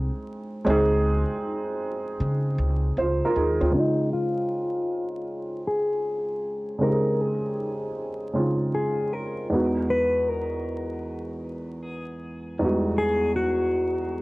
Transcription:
Already playing: upright piano G#3 C4 D#4 G#4
0.65 upright bass C#2, upright piano G#3 C4 D#4
0.70 upright piano G#4
2.20 upright bass C#3
2.59 upright bass C#2
2.97 upright bass C#2, upright piano F4 C5
3.25 upright piano F4 A#4
3.36 upright bass D#2, upright piano D#4 G#4
3.61 upright bass D2, upright piano C4 F4
3.70 upright piano C#3 G#3 C4 D#4
3.75 clean electric guitar D#4, upright piano F4
4.13 clean electric guitar F4
5.68 clean electric guitar G#4
6.78 upright piano C#3 G#3 C4 D#4
6.83 upright piano G4, clean electric guitar A#4
6.90 upright piano G#4
7.21 clean electric guitar G#4
8.33 upright piano C#3 G#3 C4 D#4 F4
8.75 clean electric guitar G#4
9.13 clean electric guitar A#4
9.50 upright piano E2 G#3 B3 D#4
9.55 upright piano F#4
9.90 clean electric guitar B4
10.29 clean electric guitar A#4
11.82 clean electric guitar G#4
12.59 upright piano E2 G3 B3 D#4
12.64 upright piano G#3 F#4
12.98 clean electric guitar G#4
13.36 clean electric guitar F#4

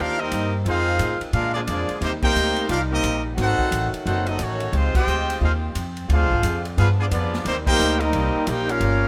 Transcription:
Already playing: upright bass D#2, saxophone section A#3 C4 D#4 G4
0.00 trumpet section D4 G4 A#4 F5, trombone section F4
0.20 trombone section G3 A#3 D#4, trumpet section C4 G4 A#4 D#5
0.31 upright bass G2, kick, hi-hat pedal, ride
0.64 upright bass F2, saxophone section D#3 G#3 C4 F4, trombone section G#3 C4 F4, kick, ride
0.68 trumpet section D#4 G#4 C5 F5
0.99 upright bass A2, kick, hi-hat pedal, ride
1.21 muted upright bass stroke, ride
1.33 upright bass A#2, saxophone section D3 A#3, trombone section G#3 D4 F4, trumpet section D4 G#4 A#4 F5, kick, ride
1.54 trombone section F3 G#3 D4, trumpet section A#3 F4 G#4 D5
1.67 upright bass F2, trombone section F3 G#3 D4, trumpet section A#3 F4 G#4 D5, kick, hi-hat pedal, ride
1.89 muted upright bass stroke, ride
2.01 upright bass D#2, saxophone section C3 G3 D#4, trombone section C3 G3 C4, trumpet section A#3 D#4 G4 C5, kick, ride
2.22 trombone section A#3 C4 G4, trumpet section D#4 A#4 C5 G5, kick, crash
2.35 upright bass D2, hi-hat pedal
2.56 ride
2.69 upright bass C2, trumpet section D4 G4 A#4 F5, trombone section F4, kick, ride
2.90 trombone section A#3 C4 D#4, trumpet section C4 G4 A#4 D#5
3.03 upright bass A#1, kick, hi-hat pedal, ride
3.34 upright bass G#1, saxophone section D#3 F#3 A3 F#4, trombone section C4 D#4 F#4, kick, snare, ride
3.39 trumpet section D#4 A4 C5 F#5
3.59 muted upright bass stroke, kick
3.71 upright bass A1, kick, hi-hat pedal, ride
3.93 muted upright bass stroke, ride
4.06 upright bass F#1, trombone section C4 D#4 F#4, trumpet section D#4 A4 C5 F#5, kick, ride
4.26 trombone section F#3 C4 D#4, trumpet section C4 F#4 A4 D#5, ride
4.39 upright bass A1, trombone section D#3 F#3 C#4, trumpet section A3 D#4 C#5, kick, hi-hat pedal, ride
4.43 trumpet section F#4
4.60 ride
4.72 upright bass C#2, trombone section F3 G#3 C4, saxophone section C4 D#4 F4 G4, trumpet section D#4 F4, kick, ride
4.77 trumpet section G#3 C5
4.94 trombone section G#3 C4 G4, trumpet section F4 C5 D#5 G5, kick, crash
5.07 upright bass D2, hi-hat pedal
5.30 ride
5.40 upright bass D#2, trombone section G#3 C4 F4, trumpet section D#4 G#4 C5 F5, kick
5.75 upright bass F2, kick, hi-hat pedal, ride
5.97 ride
6.08 upright bass D2, saxophone section D3 G#3 F4, trombone section C4 F4, kick, ride
6.12 trombone section G#3, trumpet section D4 G#4 C5 F5
6.22 upright bass C2
6.30 upright bass G#1, kick
6.43 upright bass F2, kick, hi-hat pedal, ride
6.65 ride
6.76 upright bass G2, saxophone section F3 G3 G#3 B3, trombone section B3 D4 F4, trumpet section D4 G#4 B4 F5, kick, ride
6.99 trombone section F3 B3 D4, trumpet section B3 F4 G#4 D5
7.11 upright bass F2, trombone section F3 B3 D4, trumpet section B3 F4 G#4 D5, kick, hi-hat pedal, ride
7.34 snare
7.43 upright bass D#2, trombone section D#3 G3 C4, saxophone section A#3 C4 D#4, trumpet section A#3 D#4, kick, ride
7.47 trumpet section G4 C5
7.66 trombone section A#3 D#4 G4, trumpet section D#4 A#4 C5 G5, kick, crash
7.79 upright bass D2, hi-hat pedal
7.99 trombone section G3 A#3 D#4, trumpet section C4 G4 A#4 D#5, ride
8.13 upright bass C2, kick, ride
8.35 muted upright bass stroke
8.47 upright bass A#1, trombone section A#3 D#4 G4, trumpet section D#4 A#4 C5 G5, kick, hi-hat pedal, ride
8.69 trombone section A#3 C#4 F4, trumpet section C#4 G4 A#4 F5, ride
8.80 upright bass G1, saxophone section C#3 G3 A#3 F4, kick, ride

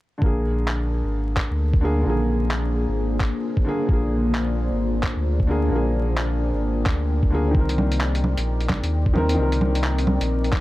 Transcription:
0.18 felt piano D3
0.22 sub bass A#1, felt piano A#3, ambient pad A#3, kick
0.26 felt piano G#4
0.64 ambient pad F4 C5, clap
1.04 sub bass G#1
1.09 ambient pad D5
1.28 ambient pad G#4
1.37 kick, clap
1.51 sub bass D2
1.74 kick
1.81 felt piano D3 A#3 G#4
2.02 felt piano D3
2.06 sub bass A#1, felt piano A#3 G#4
2.51 clap
2.88 sub bass G#1
3.20 kick, clap
3.57 kick
3.64 felt piano D3 A#3
3.69 felt piano G#4
3.85 sub bass A#1, felt piano D3 A#3, kick
3.93 felt piano G#4
4.35 clap
4.71 sub bass G#1
4.97 ambient pad G5
5.03 kick, clap
5.16 sub bass D2
5.40 kick
5.47 felt piano D3 A#3 G#4
5.68 sub bass A#1, felt piano D3 A#3
5.76 felt piano G#4
6.18 clap
6.53 sub bass G#1
6.86 sub bass D2, kick, clap
7.23 kick
7.30 felt piano D3 A#3
7.35 felt piano G#4
7.51 sub bass C2, felt piano D#3, kick
7.55 felt piano C4 A#4, ambient pad C4
7.69 closed hi-hat
7.78 low bongo
7.92 closed hi-hat
8.01 clap
8.05 ambient pad A#4
8.15 closed hi-hat
8.24 low bongo
8.37 sub bass A#1, closed hi-hat
8.60 closed hi-hat
8.69 kick, clap, low bongo
8.83 sub bass D#2, closed hi-hat
9.06 kick
9.13 felt piano D#3 C4 A#4, low bongo
9.29 closed hi-hat
9.34 sub bass C2, felt piano D#3
9.38 felt piano C4
9.43 felt piano A#4, ambient pad D#5
9.52 closed hi-hat
9.61 low bongo
9.75 closed hi-hat
9.84 clap
9.98 closed hi-hat
10.07 low bongo
10.20 sub bass A#1, closed hi-hat
10.44 closed hi-hat
10.53 kick, clap

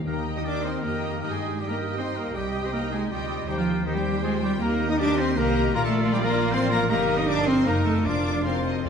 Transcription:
Already playing: harp A#3 D#4 G4 A#4
0.07 double bass section D#2, harp D#3, cello section A#3, french horn section A#3, viola section G4 D#5, oboe A#4, violin section G5 A#5
0.27 harp A#3
0.36 french horn section D#4, cello section D#4, oboe D#5, violin section D#6
0.45 cello section D4, french horn section D4, harp D#4, clarinet A#4, oboe D5, violin section D6
0.64 cello section C4, french horn section C4, harp G4, oboe C5, violin section C6
0.83 double bass section F2, cello section A#3, harp A#3, french horn section A#3, viola section G4 D#5, oboe A#4, violin section G5 A#5
1.02 harp G4
1.22 double bass section G2, harp G2, cello section A#3, french horn section A#3, clarinet D#4, viola section G4 D#5, oboe A#4, violin section G5 A#5
1.31 french horn section G#3, cello section G#3, oboe G#4, violin section G#5
1.41 harp G3
1.59 french horn section G3, cello section G3, harp D#4, oboe G4, viola section G4 D#5, clarinet G4, violin section G5
1.68 french horn section A#3, cello section A#3, oboe A#4, violin section A#5
1.79 harp G4
1.97 harp G3, french horn section C4, cello section C4, clarinet D#4, oboe C5, violin section C6
2.16 cello section A#3, french horn section A#3, harp G4, oboe A#4, violin section A#5
2.35 double bass section C2, harp C3, cello section G3, french horn section G3, oboe G4, viola section G4 D#5, clarinet G4, violin section G5
2.55 harp G3
2.64 cello section C4, french horn section C4, oboe C5, violin section C6
2.73 french horn section A#3, cello section A#3, clarinet D#4, harp D#4, oboe A#4, violin section A#5
2.92 cello section G#3, french horn section G#3, harp G4, oboe G#4, violin section G#5
3.10 double bass section D2, cello section G3, french horn section G3, harp G3, clarinet F4, oboe G4, viola section G4 D#5, violin section G5
3.30 harp G4
3.48 double bass section D#2, harp D#3, french horn section G3, cello section G3, clarinet D#4, viola section G4 C5, oboe G4, violin section G5
3.58 french horn section F3, cello section F3, oboe F4, violin section F5
3.67 harp C4
3.86 french horn section D#3, cello section D#3, harp D#4, oboe D#4, viola section G4 C5, clarinet G4, violin section D#5 G5
3.95 french horn section G3, cello section G3, oboe G4, violin section G5
4.04 harp G4
4.23 cello section G#3, french horn section G#3, harp C4, clarinet F4, oboe G#4, violin section G#5
4.42 french horn section G3, cello section G3, harp G4, oboe G4, violin section G5
4.61 double bass section D#2, harp D#3, cello section A#3, french horn section A#3, clarinet D#4, viola section G4 A#4, oboe A#4, violin section D#5 A#5
4.80 harp A#3
4.90 french horn section D#4, cello section D#4, oboe D#5, violin section D#6
4.99 cello section D4, french horn section D4, harp D#4, clarinet G4, oboe D5, violin section D6
5.18 cello section C4, french horn section C4, harp G4, oboe C5, violin section C6
5.37 double bass section C2, french horn section A#3, harp A#3, cello section A#3, clarinet G4, viola section G4 A#4, oboe A#4, violin section D#5 A#5
5.56 harp G4
5.75 double bass section A#1, harp A#2, cello section A#3, french horn section A#3, clarinet F4, viola section F4 A#4, oboe A#4, violin section D5 A#5
5.84 french horn section A3, cello section A3, oboe A4, violin section A5
5.94 harp F3
6.13 french horn section G3, cello section G3, harp D4, oboe G4, violin section G5
6.23 cello section A#3, french horn section A#3, oboe A#4, violin section A#5
6.33 harp F4
6.52 double bass section A1, harp F3, french horn section C4, cello section C4, clarinet F4, oboe C5, violin section C6
6.71 french horn section A#3, cello section A#3, harp F4, oboe A#4, violin section A#5
6.90 double bass section G1, harp G2, cello section A#3, french horn section A#3, viola section D#4 A#4, clarinet G4, oboe A#4, violin section D#5 A#5
7.09 harp G3
7.18 french horn section D#4, cello section D#4, oboe D#5, violin section D#6
7.28 harp A#3, french horn section D4, cello section D4, oboe D5, violin section D6
7.46 french horn section C4, cello section C4, harp D#4, oboe C5, violin section C6
7.66 double bass section F#1, harp F#2, french horn section A#3, cello section A#3, viola section D#4 A#4, clarinet D#4, oboe A#4, violin section D#5 A#5
7.85 french horn section A3, cello section A3, harp D#4 A#4, oboe A4, violin section A5
8.05 double bass section F1, harp F2, timpani F2, french horn section D4, cello section D4, viola section F4 A#4, clarinet F4, violin section C5 D6, oboe D5
8.25 harp C3
8.45 harp A#3, french horn section C4, cello section C4, viola section F4 A#4, oboe C5, violin section F5 C6
8.65 harp C4, violin section D#5
8.84 double bass section F1, harp F2, timpani F2, viola section F4 A4, violin section D5

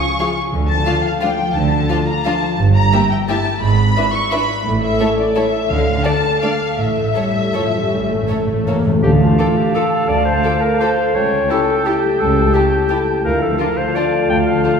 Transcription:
Already playing: harp C#3 F3 F4 G#4, violin section C#6
0.02 harp F5
0.19 viola section F3 F4, harp F4, violin section G#4 F5
0.37 harp G#4
0.52 double bass section D2, cello section D3, timpani D3, harp D3
0.69 harp F3, violin section A5
0.86 viola section F3 D4, violin section F4 F5, harp F4
1.04 harp F5, violin section F5
1.21 viola section F3 D4, violin section F4 F5 G5, harp F4
1.39 harp F3
1.55 double bass section D2, cello section D3, harp D3, violin section A5
1.73 harp D4
1.90 viola section F3 D4, violin section F4 F5, harp F4
2.07 harp F5, violin section A#5
2.25 viola section F3 D4, violin section F4 F5 A5, harp F4
2.42 harp F3
2.59 double bass section G1, cello section G2, harp G2
2.75 harp A#3, violin section A#5
2.93 viola section A#3 E4, harp G4, violin section G4 E5
3.10 harp E5, violin section G5
3.28 viola section A#3 E4, violin section G4 E5 A5, harp A#4
3.45 harp G4
3.62 double bass section G#1, harp G#2, cello section G#2, violin section B5
3.79 harp D4
3.96 viola section D4 E4, harp B4, violin section B4 E5
4.14 harp E5, violin section C#6
4.31 viola section D4 E4, violin section B4 E5 B5, harp D5
4.49 harp B4
4.65 double bass section A1, cello section A2, harp A2
4.82 harp C#4, violin section E5
5.00 viola section A3 E4, harp A4, violin section A4 C#5
5.18 violin section D5, harp E5
5.36 viola section A3 E4, violin section A4 C#5 E5, harp C#5
5.53 harp A4
5.69 double bass section D2, timpani D3, harp D3, cello section D3, violin section F5
5.87 harp D4
6.04 viola section A3 D4, violin section A4 D5 A5, harp A4
6.42 viola section A3 D4, violin section A4 D5 F5, harp D5
6.61 harp A4
6.77 double bass section A1, cello section A2, timpani A2, harp A2, violin section E5
6.97 harp A3
7.02 timpani A2
7.10 timpani A2
7.15 viola section G3, violin section A4 C#5, harp A4
7.27 timpani A2
7.35 timpani A2, harp C#5
7.44 timpani A2
7.51 timpani A2, viola section F3, violin section A4 C#5, harp A4
7.60 timpani A2
7.68 timpani A2
7.74 timpani A2, viola section G3, harp C#4
7.83 timpani A2
7.91 double bass section A1, timpani A2, cello section A2, harp A2
7.98 timpani A2
8.06 timpani A2, viola section A3
8.10 harp A3
8.14 timpani A2
8.23 timpani A2
8.29 timpani A2, harp A4, violin section A4 C#5
8.39 timpani A2
8.47 timpani A2, harp C#5
8.55 timpani A2
8.63 timpani A2, viola section A#3
8.67 harp A4, violin section A4 C#5
8.71 timpani A2
8.79 timpani A2
8.86 timpani A2, viola section A3, harp C#4
8.94 timpani A2
9.03 double bass section D2, cello section D2, harp D3, timpani D3, french horn section A3 A4, clarinet G4, cor anglais F5, flute section A5
9.20 harp A3, clarinet F4
9.38 viola section F4, violin section A4 D6, harp A4
9.57 harp D4, clarinet G4
9.75 viola section F4, clarinet A4, harp A4, violin section A4 D6
9.93 harp D4
10.09 cello section D2, double bass section D2, harp D3, clarinet D5
10.25 harp A3, clarinet C5
10.44 viola section F4, violin section A4 D6, harp A4
10.61 harp D4, clarinet A#4
10.80 viola section F4, harp A4, violin section A4 D6, clarinet C5
10.99 harp D4
11.15 double bass section C#2, cello section C#2, harp C#3, french horn section A3, clarinet C#5, cor anglais G5, flute section A5
11.32 harp C#4
11.50 harp E4, viola section E4, violin section G4 A5, clarinet A4
11.68 harp A4
11.86 harp E4, viola section E4, violin section G4 A5, french horn section G4, clarinet G4
12.04 harp G3
12.20 double bass section C#2, cello section C#2, harp C#3, clarinet A4
12.37 harp C#4
12.54 harp E4, viola section E4, violin section G4 A5, clarinet G4
12.73 harp A4
12.90 harp E4, viola section E4, violin section G4 A5
13.08 harp G3
13.24 double bass section D2, cello section D2, harp D3, french horn section A3 F4, clarinet A#4, cor anglais F5, flute section A5
13.42 harp F3, clarinet A4
13.59 viola section D4, violin section F4 A5, harp A4, clarinet A#4
13.77 harp F4, clarinet C5
13.95 viola section D4, violin section F4 A5, harp A4, clarinet D5
14.13 harp D4
14.29 double bass section D2, cello section D2, harp D3, clarinet G5
14.47 clarinet F5
14.64 viola section D4, violin section F4 A5, harp A4

